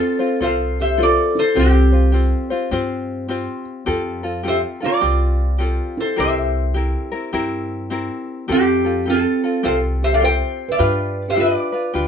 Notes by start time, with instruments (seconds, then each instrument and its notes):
Already playing: ukulele C4 F4 A4 C5, felt piano C4, resonator guitar played with a steel bar F4 A4
0.19 ukulele C4 F4 C5
0.40 upright bass C2, ukulele C4 F4 A4 C5, felt piano A4, resonator guitar played with a steel bar C5 F5
0.80 felt piano G4, resonator guitar played with a steel bar C5 E5
0.97 ukulele C4 F4 A4 C5, felt piano F4
1.03 resonator guitar played with a steel bar A4 D5
1.35 felt piano E4, resonator guitar played with a steel bar A4
1.39 resonator guitar played with a steel bar C5
1.55 upright bass C2, felt piano C4, ukulele C4 F4 G4 C5
1.59 resonator guitar played with a steel bar C4 G4
1.92 ukulele C4 F4 C5
2.12 ukulele C4 F4 G4 C5
2.50 ukulele C4 F4 C5
2.71 upright bass G2, ukulele C4 F4 G4 C5
3.28 ukulele C4 F4 G4 C5
3.86 upright bass F2, ukulele C4 F4 G4 A4
4.23 ukulele C4 F4 A4
4.43 ukulele C4 F4 G4 A4, felt piano G4
4.48 resonator guitar played with a steel bar C5 E5
4.80 ukulele C4 F4 A4, felt piano F4, resonator guitar played with a steel bar A#4
4.86 resonator guitar played with a steel bar D5
5.01 upright bass C2, ukulele C4 F4 G4
5.58 ukulele C4 F4 G4 A4
5.66 resonator guitar played with a steel bar C5
5.97 felt piano E4, resonator guitar played with a steel bar A4 C5
6.16 upright bass C2, ukulele C4 E4 G4 A#4, felt piano G4, resonator guitar played with a steel bar C5 E5
6.74 ukulele C4 E4 G4 A#4
7.12 ukulele C4 E4 A#4
7.33 upright bass G2, ukulele C4 E4 G4 A#4
7.90 ukulele C4 E4 G4 A#4
8.48 upright bass F2, ukulele C4 F4 G4 A4, felt piano C4, resonator guitar played with a steel bar C4
8.52 resonator guitar played with a steel bar G4
8.85 ukulele C4 F4 A4
9.06 ukulele C4 F4 G4 A4, felt piano C4, resonator guitar played with a steel bar F4
9.10 resonator guitar played with a steel bar A4
9.44 ukulele C4 F4 A4
9.63 upright bass C2, ukulele C4 F4 G4 A4, felt piano A4, resonator guitar played with a steel bar C5 F5
10.03 felt piano G4, resonator guitar played with a steel bar C5 E5
10.12 felt piano A4, resonator guitar played with a steel bar D5 F5
10.20 ukulele C4 F4 G4 A4, felt piano C5
10.25 resonator guitar played with a steel bar C5 G5
10.69 felt piano B4, resonator guitar played with a steel bar D5 F5
10.79 upright bass G2, ukulele D4 F4 G4 B4
11.28 felt piano G4, resonator guitar played with a steel bar C5 E5
11.35 ukulele D4 F4 G4 B4, felt piano F4
11.40 resonator guitar played with a steel bar B4 D5
11.72 ukulele D4 F4 B4
11.94 upright bass D2, ukulele D4 F4 G4 B4